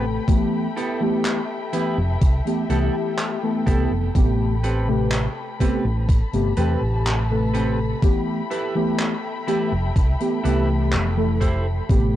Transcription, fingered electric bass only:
0, 0, Header, 1, 2, 480
1, 0, Start_track
1, 0, Tempo, 967742
1, 139, Time_signature, 4, 2, 24, 8
1, 6031, End_track
2, 0, Start_track
2, 0, Title_t, "Fingered electric bass"
2, 0, Program_c, 0, 33
2, 0, Note_on_c, 0, 33, 84
2, 88, Note_off_c, 0, 33, 0
2, 981, Note_on_c, 0, 29, 107
2, 1068, Note_off_c, 0, 29, 0
2, 1098, Note_on_c, 0, 36, 84
2, 1188, Note_off_c, 0, 36, 0
2, 1338, Note_on_c, 0, 36, 86
2, 1428, Note_off_c, 0, 36, 0
2, 1819, Note_on_c, 0, 36, 83
2, 1908, Note_off_c, 0, 36, 0
2, 1939, Note_on_c, 0, 29, 88
2, 2027, Note_off_c, 0, 29, 0
2, 2059, Note_on_c, 0, 33, 100
2, 2609, Note_off_c, 0, 33, 0
2, 2901, Note_on_c, 0, 33, 109
2, 3076, Note_off_c, 0, 33, 0
2, 3141, Note_on_c, 0, 31, 89
2, 3228, Note_off_c, 0, 31, 0
2, 3260, Note_on_c, 0, 40, 84
2, 3349, Note_off_c, 0, 40, 0
2, 3380, Note_on_c, 0, 33, 84
2, 3928, Note_off_c, 0, 33, 0
2, 4821, Note_on_c, 0, 29, 108
2, 4908, Note_off_c, 0, 29, 0
2, 4940, Note_on_c, 0, 36, 83
2, 5029, Note_off_c, 0, 36, 0
2, 5182, Note_on_c, 0, 36, 89
2, 5420, Note_on_c, 0, 29, 90
2, 5428, Note_off_c, 0, 36, 0
2, 5849, Note_off_c, 0, 29, 0
2, 5899, Note_on_c, 0, 33, 101
2, 6031, Note_off_c, 0, 33, 0
2, 6031, End_track
0, 0, End_of_file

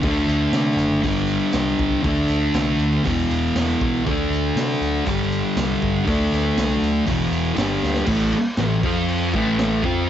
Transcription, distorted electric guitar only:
0, 0, Header, 1, 3, 480
1, 0, Start_track
1, 0, Tempo, 502934
1, 37, Time_signature, 4, 2, 24, 8
1, 9636, End_track
2, 0, Start_track
2, 0, Title_t, "Distorted electric guitar"
2, 0, Program_c, 0, 30
2, 14, Note_on_c, 0, 50, 94
2, 42, Note_on_c, 0, 57, 108
2, 70, Note_on_c, 0, 62, 109
2, 971, Note_off_c, 0, 50, 0
2, 971, Note_on_c, 0, 43, 86
2, 986, Note_off_c, 0, 57, 0
2, 997, Note_on_c, 0, 50, 94
2, 999, Note_off_c, 0, 62, 0
2, 1025, Note_on_c, 0, 55, 93
2, 1923, Note_off_c, 0, 50, 0
2, 1930, Note_off_c, 0, 43, 0
2, 1934, Note_on_c, 0, 50, 94
2, 1957, Note_off_c, 0, 55, 0
2, 1964, Note_on_c, 0, 57, 91
2, 1984, Note_on_c, 0, 62, 107
2, 2892, Note_off_c, 0, 50, 0
2, 2895, Note_on_c, 0, 40, 90
2, 2907, Note_off_c, 0, 57, 0
2, 2917, Note_off_c, 0, 62, 0
2, 2924, Note_on_c, 0, 47, 99
2, 2948, Note_on_c, 0, 52, 108
2, 3853, Note_off_c, 0, 40, 0
2, 3859, Note_off_c, 0, 47, 0
2, 3863, Note_on_c, 0, 50, 93
2, 3880, Note_off_c, 0, 52, 0
2, 3891, Note_on_c, 0, 57, 102
2, 3911, Note_on_c, 0, 62, 101
2, 4817, Note_off_c, 0, 50, 0
2, 4821, Note_on_c, 0, 43, 90
2, 4831, Note_off_c, 0, 57, 0
2, 4841, Note_off_c, 0, 62, 0
2, 4845, Note_on_c, 0, 50, 93
2, 4870, Note_on_c, 0, 55, 108
2, 5760, Note_off_c, 0, 50, 0
2, 5771, Note_on_c, 0, 50, 97
2, 5777, Note_off_c, 0, 43, 0
2, 5796, Note_off_c, 0, 55, 0
2, 5800, Note_on_c, 0, 57, 103
2, 5822, Note_on_c, 0, 62, 103
2, 6731, Note_off_c, 0, 50, 0
2, 6735, Note_on_c, 0, 40, 86
2, 6746, Note_off_c, 0, 57, 0
2, 6757, Note_off_c, 0, 62, 0
2, 6762, Note_on_c, 0, 47, 90
2, 6787, Note_on_c, 0, 52, 99
2, 7200, Note_off_c, 0, 40, 0
2, 7204, Note_on_c, 0, 43, 97
2, 7227, Note_off_c, 0, 47, 0
2, 7233, Note_on_c, 0, 50, 100
2, 7239, Note_off_c, 0, 52, 0
2, 7255, Note_on_c, 0, 55, 110
2, 7687, Note_off_c, 0, 43, 0
2, 7692, Note_off_c, 0, 50, 0
2, 7696, Note_on_c, 0, 45, 103
2, 7703, Note_off_c, 0, 55, 0
2, 7706, Note_on_c, 0, 52, 101
2, 7714, Note_on_c, 0, 57, 107
2, 7941, Note_off_c, 0, 45, 0
2, 7946, Note_off_c, 0, 52, 0
2, 7949, Note_off_c, 0, 57, 0
2, 8195, Note_on_c, 0, 45, 59
2, 8197, Note_on_c, 0, 52, 84
2, 8389, Note_off_c, 0, 45, 0
2, 8390, Note_off_c, 0, 52, 0
2, 8440, Note_on_c, 0, 53, 85
2, 8444, Note_on_c, 0, 60, 102
2, 8454, Note_on_c, 0, 65, 101
2, 8911, Note_off_c, 0, 53, 0
2, 8914, Note_off_c, 0, 60, 0
2, 8916, Note_on_c, 0, 45, 88
2, 8919, Note_off_c, 0, 65, 0
2, 8929, Note_on_c, 0, 52, 96
2, 8939, Note_on_c, 0, 57, 106
2, 9383, Note_off_c, 0, 45, 0
2, 9387, Note_on_c, 0, 53, 88
2, 9391, Note_off_c, 0, 52, 0
2, 9395, Note_on_c, 0, 60, 101
2, 9399, Note_off_c, 0, 57, 0
2, 9403, Note_on_c, 0, 65, 93
2, 9620, Note_off_c, 0, 53, 0
2, 9628, Note_off_c, 0, 60, 0
2, 9632, Note_off_c, 0, 65, 0
2, 9636, End_track
3, 0, Start_track
3, 0, Title_t, "Muted distorted electric guitar strokes"
3, 7954, Note_on_c, 9, 29, 64
3, 8049, Note_off_c, 9, 29, 0
3, 9636, End_track
0, 0, End_of_file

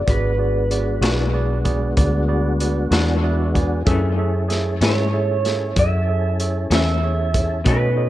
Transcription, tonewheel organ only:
0, 0, Header, 1, 2, 480
1, 0, Start_track
1, 0, Tempo, 631579
1, 58, Time_signature, 12, 3, 24, 8
1, 6150, End_track
2, 0, Start_track
2, 0, Title_t, "Tonewheel organ"
2, 0, Program_c, 0, 16
2, 52, Note_on_c, 0, 62, 55
2, 54, Note_on_c, 0, 59, 62
2, 56, Note_on_c, 0, 66, 60
2, 60, Note_on_c, 0, 56, 67
2, 2908, Note_off_c, 0, 62, 0
2, 2909, Note_off_c, 0, 59, 0
2, 2910, Note_off_c, 0, 66, 0
2, 2912, Note_off_c, 0, 56, 0
2, 2924, Note_on_c, 0, 65, 51
2, 2928, Note_on_c, 0, 62, 55
2, 2932, Note_on_c, 0, 69, 54
2, 2934, Note_on_c, 0, 58, 55
2, 3167, Note_off_c, 0, 69, 0
2, 3170, Note_on_c, 0, 64, 52
2, 3172, Note_off_c, 0, 65, 0
2, 3172, Note_on_c, 0, 61, 61
2, 3173, Note_on_c, 0, 68, 56
2, 3174, Note_off_c, 0, 62, 0
2, 3176, Note_on_c, 0, 69, 60
2, 3177, Note_off_c, 0, 58, 0
2, 5788, Note_off_c, 0, 64, 0
2, 5789, Note_off_c, 0, 61, 0
2, 5789, Note_off_c, 0, 68, 0
2, 5791, Note_off_c, 0, 69, 0
2, 5812, Note_on_c, 0, 57, 61
2, 5812, Note_on_c, 0, 63, 65
2, 5815, Note_on_c, 0, 66, 64
2, 5816, Note_on_c, 0, 61, 61
2, 6150, Note_off_c, 0, 57, 0
2, 6150, Note_off_c, 0, 61, 0
2, 6150, Note_off_c, 0, 63, 0
2, 6150, Note_off_c, 0, 66, 0
2, 6150, End_track
0, 0, End_of_file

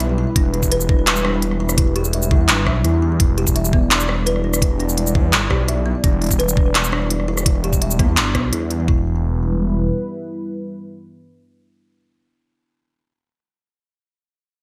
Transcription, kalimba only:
0, 0, Header, 1, 2, 480
1, 0, Start_track
1, 0, Key_signature, 1, "minor"
1, 0, Tempo, 355030
1, 488, Time_signature, 4, 2, 24, 8
1, 19777, End_track
2, 0, Start_track
2, 0, Title_t, "Kalimba"
2, 0, Program_c, 0, 108
2, 0, Note_on_c, 0, 76, 78
2, 220, Note_off_c, 0, 76, 0
2, 245, Note_on_c, 0, 64, 106
2, 475, Note_off_c, 0, 64, 0
2, 484, Note_on_c, 0, 62, 84
2, 625, Note_off_c, 0, 62, 0
2, 727, Note_on_c, 0, 64, 82
2, 944, Note_off_c, 0, 64, 0
2, 969, Note_on_c, 0, 71, 110
2, 1197, Note_off_c, 0, 71, 0
2, 1211, Note_on_c, 0, 62, 82
2, 1426, Note_off_c, 0, 62, 0
2, 1449, Note_on_c, 0, 64, 102
2, 1665, Note_off_c, 0, 64, 0
2, 1687, Note_on_c, 0, 62, 102
2, 1904, Note_off_c, 0, 62, 0
2, 1927, Note_on_c, 0, 64, 75
2, 2144, Note_off_c, 0, 64, 0
2, 2166, Note_on_c, 0, 64, 101
2, 2306, Note_off_c, 0, 64, 0
2, 2405, Note_on_c, 0, 64, 82
2, 2545, Note_off_c, 0, 64, 0
2, 2645, Note_on_c, 0, 67, 103
2, 2875, Note_off_c, 0, 67, 0
2, 2888, Note_on_c, 0, 76, 81
2, 3104, Note_off_c, 0, 76, 0
2, 3127, Note_on_c, 0, 64, 104
2, 3356, Note_off_c, 0, 64, 0
2, 3365, Note_on_c, 0, 62, 86
2, 3505, Note_off_c, 0, 62, 0
2, 3607, Note_on_c, 0, 76, 81
2, 3836, Note_off_c, 0, 76, 0
2, 3850, Note_on_c, 0, 64, 94
2, 4065, Note_off_c, 0, 64, 0
2, 4088, Note_on_c, 0, 64, 78
2, 4304, Note_off_c, 0, 64, 0
2, 4330, Note_on_c, 0, 64, 86
2, 4468, Note_off_c, 0, 64, 0
2, 4565, Note_on_c, 0, 67, 102
2, 4795, Note_off_c, 0, 67, 0
2, 4808, Note_on_c, 0, 76, 81
2, 5024, Note_off_c, 0, 76, 0
2, 5045, Note_on_c, 0, 59, 102
2, 5263, Note_off_c, 0, 59, 0
2, 5283, Note_on_c, 0, 62, 84
2, 5424, Note_off_c, 0, 62, 0
2, 5525, Note_on_c, 0, 64, 81
2, 5743, Note_off_c, 0, 64, 0
2, 5763, Note_on_c, 0, 71, 101
2, 5994, Note_off_c, 0, 71, 0
2, 6002, Note_on_c, 0, 62, 81
2, 6221, Note_off_c, 0, 62, 0
2, 6242, Note_on_c, 0, 64, 97
2, 6461, Note_off_c, 0, 64, 0
2, 6483, Note_on_c, 0, 62, 100
2, 6702, Note_off_c, 0, 62, 0
2, 6721, Note_on_c, 0, 64, 78
2, 6941, Note_off_c, 0, 64, 0
2, 6965, Note_on_c, 0, 64, 108
2, 7105, Note_off_c, 0, 64, 0
2, 7201, Note_on_c, 0, 64, 85
2, 7344, Note_off_c, 0, 64, 0
2, 7440, Note_on_c, 0, 67, 108
2, 7672, Note_off_c, 0, 67, 0
2, 7678, Note_on_c, 0, 76, 77
2, 7899, Note_off_c, 0, 76, 0
2, 7917, Note_on_c, 0, 59, 104
2, 8139, Note_off_c, 0, 59, 0
2, 8160, Note_on_c, 0, 62, 83
2, 8303, Note_off_c, 0, 62, 0
2, 8401, Note_on_c, 0, 64, 76
2, 8621, Note_off_c, 0, 64, 0
2, 8638, Note_on_c, 0, 71, 102
2, 8871, Note_off_c, 0, 71, 0
2, 8883, Note_on_c, 0, 62, 79
2, 9102, Note_off_c, 0, 62, 0
2, 9123, Note_on_c, 0, 64, 104
2, 9342, Note_off_c, 0, 64, 0
2, 9362, Note_on_c, 0, 62, 103
2, 9581, Note_off_c, 0, 62, 0
2, 9603, Note_on_c, 0, 64, 78
2, 9822, Note_off_c, 0, 64, 0
2, 9845, Note_on_c, 0, 64, 108
2, 9985, Note_off_c, 0, 64, 0
2, 10088, Note_on_c, 0, 64, 83
2, 10227, Note_off_c, 0, 64, 0
2, 10329, Note_on_c, 0, 67, 96
2, 10557, Note_off_c, 0, 67, 0
2, 10570, Note_on_c, 0, 76, 78
2, 10785, Note_off_c, 0, 76, 0
2, 10808, Note_on_c, 0, 59, 108
2, 11025, Note_off_c, 0, 59, 0
2, 11047, Note_on_c, 0, 62, 80
2, 11187, Note_off_c, 0, 62, 0
2, 11286, Note_on_c, 0, 59, 104
2, 11503, Note_off_c, 0, 59, 0
2, 11531, Note_on_c, 0, 64, 97
2, 11746, Note_off_c, 0, 64, 0
2, 11771, Note_on_c, 0, 64, 79
2, 11986, Note_off_c, 0, 64, 0
2, 12011, Note_on_c, 0, 64, 93
2, 12233, Note_off_c, 0, 64, 0
2, 19777, End_track
0, 0, End_of_file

